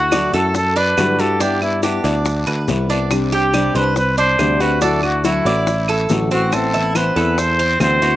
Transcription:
Already playing: D2 A3 E4 F#4
0.12 D3 F#3 A3 E4 F#4 D5, high bongo, short guiro, claves, maracas
0.33 F#2 A3 E4 F#4 A4, high bongo, short guiro, maracas
0.55 A4, muted nylon-string guitar stroke, high bongo, long guiro, maracas
0.76 D4 B4, high bongo, maracas
0.97 G2 D3 F#3 A3 E4 F#4, high bongo, low bongo, short guiro, claves, maracas
1.18 A3 E4 F#4 G4 A4, short guiro, maracas
1.40 G3 B3 D4 E4 G4, high bongo, long guiro, maracas
1.61 B3 E4, high bongo, claves, maracas
1.83 G3 B3 D4 E4 G4, high bongo, short guiro, maracas
2.04 D2 B3 E4 D5, high bongo, short guiro, maracas
2.25 muted nylon-string guitar stroke, high bongo, long guiro, maracas
2.47 D2 B4, high bongo, claves, maracas
2.68 C2 G3 B3 E4, high bongo, low bongo, short guiro, maracas
2.89 B3 D4 E4, short guiro, maracas
3.11 C3 G3 C4 D4 G4, high bongo, long guiro, claves, maracas
3.32 C4 D4 G4, high bongo, maracas
3.53 C3 G3 C4 D4 G4 D5, high bongo, short guiro, claves, maracas
3.75 C2 C4 D4 G4 B4 C5, high bongo, short guiro, maracas
3.96 B4, muted nylon-string guitar stroke, high bongo, long guiro, maracas
4.17 D4 C5, high bongo, maracas
4.39 D2 C3 G3 C4 D4 G4, high bongo, low bongo, short guiro, claves, maracas
4.60 C4 D4 F#4 G4 B4, short guiro, maracas
4.81 D3 F#3 A3 D4 E4 F#4 A4, high bongo, long guiro, maracas
5.03 A3 E4 F#4, high bongo, claves, maracas
5.24 D3 F#3 A3 E4 F#4, high bongo, short guiro, maracas
5.45 A1 A3 E4 F#4 D5, high bongo, short guiro, maracas
5.67 muted nylon-string guitar stroke, high bongo, long guiro, maracas
5.88 A4, high bongo, claves, maracas
6.09 A1 D3 F#3 A3 E4 F#4, high bongo, low bongo, short guiro, maracas
6.31 A3 C4 E4 F#4, short guiro, maracas
6.52 E3 B3 C4 E4 A4, high bongo, long guiro, claves, maracas
6.74 B3 C4 E4, high bongo, maracas
6.95 E3 B3 C4 E4 B4 C5, high bongo, short guiro, claves, maracas
7.16 E2 B3 C4 E4 A4, high bongo, short guiro, maracas
7.38 C5, muted nylon-string guitar stroke, high bongo, long guiro, maracas
7.59 C4, high bongo, maracas
7.80 D2 E3 B3 C4 E4 C5, high bongo, low bongo, short guiro, claves, maracas
8.02 B3 C4 E4 F#4, short guiro, maracas

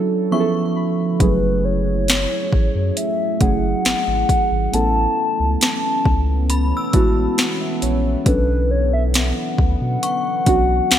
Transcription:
Already playing: D3 F#3 C#4 D4 E4 F#4 A4 C#5
0.31 F3 B3 C#4 E4 G#4 E5 C#6
0.40 A4
0.76 B5
1.19 F#1 F#3 G#3 A3 C#4 E4 G#4 B4, kick, closed hi-hat
1.26 A3
1.65 C#5
2.08 snare, closed hi-hat
2.53 A1, kick
2.75 F#2
2.97 E5, closed hi-hat
3.40 F#1 F#3 A3 C#4 E4 G#4 F#5, kick, closed hi-hat
3.85 G#1, snare, closed hi-hat
4.07 G#1
4.29 kick, closed hi-hat
4.51 G#1
4.72 A1 E3 A3 B3 C#4 E4 A4 A5, closed hi-hat
5.40 C#2
5.61 A5, snare, closed hi-hat
6.05 C#2, kick
6.50 B5, closed hi-hat
6.77 E6
6.93 A1 G#3 B3 C#4 E4 F#4 A5, kick, closed hi-hat
7.38 F#5, snare, closed hi-hat
7.60 E5
7.82 A#1 C#5, closed hi-hat
8.25 B1 D3 F#3 B3 C#4 D4 A4 B4, kick, closed hi-hat
8.71 C#5
8.93 E5
9.14 F#5, snare, closed hi-hat
9.58 D2, kick
9.81 B2
10.03 C#6, closed hi-hat
10.46 B1 F#3 B3 C#4 D4 F#4, kick, closed hi-hat
10.91 C#2, snare, closed hi-hat

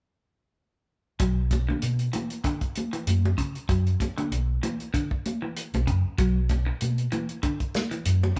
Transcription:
1.20 B1 F#3, kick, closed hi-hat
1.51 kick, closed hi-hat, high conga
1.69 D3, high conga
1.82 B2, closed hi-hat
1.99 closed hi-hat
2.13 E3, closed hi-hat, high conga
2.30 closed hi-hat
2.44 D3, kick, closed hi-hat
2.61 kick, closed hi-hat
2.76 closed hi-hat, high conga
2.93 E3, closed hi-hat
3.07 F#2, closed hi-hat, high conga
3.25 high conga
3.38 C#3, kick, closed hi-hat
3.55 closed hi-hat
3.69 F#2 F#3, kick, closed hi-hat
3.87 closed hi-hat
4.00 kick, closed hi-hat, high conga
4.18 D3, closed hi-hat, high conga
4.31 B1, closed hi-hat
4.63 E3, closed hi-hat, high conga
4.80 closed hi-hat
4.94 D3, kick, closed hi-hat
5.11 kick
5.26 closed hi-hat, high conga
5.42 E3
5.57 closed hi-hat
5.74 B1, closed hi-hat, high conga
5.87 F#2 C#3, kick, closed hi-hat
6.05 muted fingered electric bass stroke
6.18 B1 F#3, kick, closed hi-hat
6.49 kick, closed hi-hat, high conga
6.67 muted clean electric guitar stroke
6.81 B2, closed hi-hat, high conga
6.98 closed hi-hat
7.12 E3, closed hi-hat, high conga
7.29 closed hi-hat
7.43 D3, kick, closed hi-hat
7.60 kick, closed hi-hat
7.75 snare, closed hi-hat, high conga
7.91 E3, closed hi-hat
8.06 F#2, closed hi-hat
8.23 high conga

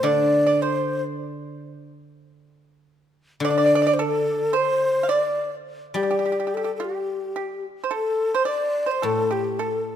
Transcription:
0.03 D3 D5
0.47 D5
0.62 C5
3.40 D3
3.44 D5
3.50 D5
3.58 D5
3.66 D5
3.75 D5
3.82 D5
3.87 D5
3.94 C5
3.99 A4
4.53 C5
5.03 F5
5.09 D5
5.94 G3 G4
6.03 G4
6.11 G4
6.19 G4
6.26 G4
6.32 G4
6.40 G4
6.47 G4
6.54 G4 A4
6.64 G4
6.76 G4 A4
6.85 G4
7.36 G4
7.84 C5
7.91 A4
8.35 C5
8.45 D5
8.86 C5
8.91 C5
9.02 A2 A4
9.31 G4
9.59 A4

